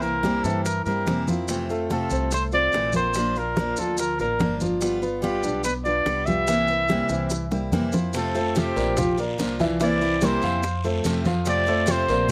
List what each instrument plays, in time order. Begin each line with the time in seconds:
Already playing: upright bass C2, grand piano E3 E4
0.01 steel-string acoustic guitar A#3 C4 E4, trumpet A#4, high conga, maracas
0.23 steel-string acoustic guitar C3 E3 A#3 C4 E4, grand piano G3 G4, high bongo, high conga, maracas
0.44 upright bass G2, grand piano E3 E4, trumpet A4, high bongo, high conga, maracas
0.64 trumpet A#4, muted steel-string acoustic guitar stroke, high bongo, high conga, maracas
0.85 upright bass G2, grand piano G3 G4, steel-string acoustic guitar C4 E4, trumpet A#4, high bongo, high conga, maracas
0.89 steel-string acoustic guitar A#3
1.07 upright bass F2, steel-string acoustic guitar C3 E3 A#3 C4 E4, high bongo, low bongo, high conga, maracas
1.27 grand piano F3 F4, steel-string acoustic guitar A#3 C4 E4, high bongo, high conga, maracas
1.48 steel-string acoustic guitar C3 E3 A3 C4 F4, high bongo, high conga, maracas
1.69 grand piano A3 A4, steel-string acoustic guitar A3 C4 F4, high bongo, high conga, maracas
1.90 steel-string acoustic guitar C3 A3 C4 F4, grand piano F4 F5, trumpet A4, high bongo, high conga, maracas
2.10 upright bass C2, grand piano C4 C5, high bongo, high conga, maracas
2.31 grand piano A3 A4, trumpet C5, muted steel-string acoustic guitar stroke, high bongo, high conga, maracas
2.52 steel-string acoustic guitar A3 C4 F4, grand piano C4 C5, trumpet D5, high bongo, high conga, maracas
2.72 upright bass A#1, steel-string acoustic guitar C3 E3 A3 C4 F4, high bongo, low bongo, high conga, maracas
2.93 grand piano A#3 A#4, steel-string acoustic guitar C4 F4, trumpet C5, high conga, maracas
2.97 steel-string acoustic guitar A3
3.14 steel-string acoustic guitar F3 A#3 D4 F4, grand piano F3 F4, high bongo, high conga, maracas
3.36 steel-string acoustic guitar A#3 D4 F4, trumpet A#4, high conga, maracas
3.56 steel-string acoustic guitar F3 A#3 D4 F4, grand piano A#3 A#4, high bongo, high conga, maracas
3.77 upright bass D2, grand piano F3 F4, trumpet A4, high bongo, high conga, maracas
3.97 trumpet A#4, muted steel-string acoustic guitar stroke, high bongo, high conga, maracas
4.19 upright bass A1, grand piano A#3 A#4, steel-string acoustic guitar A#3 D4 F4, trumpet A#4, high bongo, high conga, maracas
4.39 upright bass G1, steel-string acoustic guitar F3 A#3 D4 F4, high bongo, low bongo, high conga, maracas
4.60 grand piano F3 F4, steel-string acoustic guitar A#3 D4 F4, high bongo, high conga, maracas
4.81 steel-string acoustic guitar G3 B3 F4, high bongo, high conga, maracas
5.02 grand piano B3 B4, steel-string acoustic guitar B3 F4, high bongo, high conga, maracas
5.22 steel-string acoustic guitar G3 B3 F4, grand piano F4 F5, trumpet G4, high bongo, high conga, maracas
5.43 upright bass B1, grand piano D4 D5, high bongo, high conga, maracas
5.64 grand piano B3 B4, trumpet B4, muted steel-string acoustic guitar stroke, high bongo, high conga, maracas
5.85 steel-string acoustic guitar B3 F4, grand piano D4 D5, trumpet D5, high bongo, high conga, maracas
6.06 upright bass C2, steel-string acoustic guitar G3 B3 F4, high bongo, low bongo, high conga, maracas
6.26 grand piano G3 G4, steel-string acoustic guitar B3 F4, trumpet E5, high conga, maracas
6.47 steel-string acoustic guitar C3 E3 A#3 C4 E4, grand piano E3 E4, high bongo, high conga, maracas
6.67 steel-string acoustic guitar A#3 C4 E4, high conga, maracas
6.88 steel-string acoustic guitar C3 E3 A#3 C4 E4, grand piano G3 G4, high bongo, high conga, maracas
7.09 upright bass C2, grand piano E3 E4, high bongo, high conga, maracas
7.30 muted steel-string acoustic guitar stroke, high bongo, high conga, maracas
7.51 grand piano G3 G4, steel-string acoustic guitar A#3 C4 E4, low bongo, high conga, maracas
7.72 upright bass F2, steel-string acoustic guitar C3 E3 A#3 C4 E4, low bongo, high conga, maracas
7.92 grand piano F3 F4, steel-string acoustic guitar A#3 C4 E4, low bongo, high conga, maracas
8.13 steel-string acoustic guitar C3 F3 A3 C4 F4, trumpet A4, high bongo, high conga, long guiro, maracas
8.35 grand piano A3 A4 C5, steel-string acoustic guitar A3 C4 F4, high bongo, high conga, maracas
8.55 steel-string acoustic guitar C3 F3 A3 C4 F4, trumpet G4, high bongo, high conga, short guiro, maracas
8.76 upright bass A#1, grand piano A#3 A#4 D5, high bongo, high conga, short guiro, maracas
8.97 grand piano F3 F4 F5, muted steel-string acoustic guitar stroke, high bongo, high conga, low conga, long guiro, maracas
9.17 grand piano A#3 A#4 D5, steel-string acoustic guitar A#3 D4 F4, high bongo, high conga, maracas
9.38 upright bass C2, steel-string acoustic guitar F3 A#3 D4 F4, high bongo, low bongo, high conga, short guiro, maracas
9.60 grand piano E3 E4 E5, steel-string acoustic guitar A#3 D4 F4, high conga, short guiro, maracas
9.80 steel-string acoustic guitar C3 E3 A#3 C4 E4, grand piano E3 E4 E5, trumpet D5, high bongo, high conga, long guiro, maracas
10.01 steel-string acoustic guitar A#3 C4 E4, high bongo, high conga, maracas
10.21 steel-string acoustic guitar C3 E3 A#3 C4 E4, grand piano G3 G4 A#4, trumpet C5, high bongo, high conga, short guiro, maracas
10.42 upright bass F2, grand piano F5, high bongo, high conga, short guiro, maracas
10.63 muted steel-string acoustic guitar stroke, high bongo, high conga, long guiro, maracas
10.84 grand piano A3 A4 C5, steel-string acoustic guitar A3 C4 F4, high bongo, high conga, maracas
11.04 upright bass F2, steel-string acoustic guitar C3 F3 A3 C4 F4, high bongo, low bongo, high conga, short guiro, maracas
11.25 grand piano F3 F4 F5, steel-string acoustic guitar A3 C4 F4, high conga, short guiro, maracas
11.45 steel-string acoustic guitar C3 F3 A3 C4 F4, trumpet D5, high bongo, high conga, long guiro, maracas
11.66 steel-string acoustic guitar A3 C4 F4, grand piano A3 A4 C5, high bongo, high conga, maracas
11.86 steel-string acoustic guitar C3 F3 A3 C4 F4, high bongo, high conga, short guiro, maracas
11.91 trumpet C5
12.08 upright bass A#1, grand piano A#3 A#4 D5, high bongo, high conga, short guiro, maracas